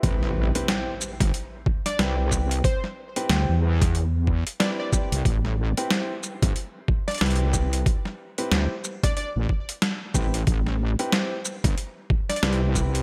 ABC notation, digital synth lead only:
X:1
M:4/4
L:1/16
Q:"Swing 16ths" 1/4=92
K:Am
V:1 name="Digital synth lead"
z8 z3 d z4 | c z8 z3 d d z2 | z8 z3 d z4 | z6 z d d z6 z |
z8 z3 d z4 |]